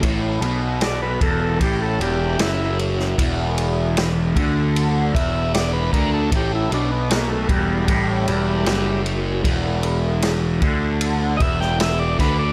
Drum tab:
RD |x-x-x-x-x-x-x-x-|x-x-x-x-x-x-x-x-|x-x-x-x-x-x-x-x-|x-x-x-x-x-x-x-x-|
SD |----o-------o--o|----o-------o---|----o-------o---|----o------oo-o-|
BD |o-----o-o-------|o-----o---o---o-|o-----o-o-------|o-----o---o---o-|